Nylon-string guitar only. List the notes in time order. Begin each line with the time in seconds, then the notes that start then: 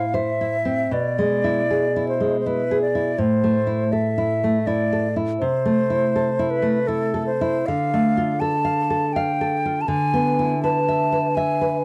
Already playing: A2 E4
0.14 C5
0.41 E4
0.65 C4
0.91 B2
1.19 G#3
1.44 E4
1.71 G#4
1.96 E4
2.20 G#3
2.46 E4
2.71 G#4
2.95 E4
3.18 A2
3.44 A3
3.67 E4
3.93 A4
4.18 E4
4.44 A3
4.67 E4
4.93 A4
5.16 E4
5.42 C3
5.65 A3
5.90 E4
6.16 A4
6.39 E4
6.62 A3
6.88 E4
7.14 A4
7.41 E4
7.68 D3
7.94 A3
8.17 F4
8.41 A4
8.65 F5
8.90 A4
9.16 F5
9.41 A4
9.65 F4
9.88 D3
10.14 B3
10.39 E4
10.64 B4
10.88 E5
11.12 B4
11.37 E5
11.61 B4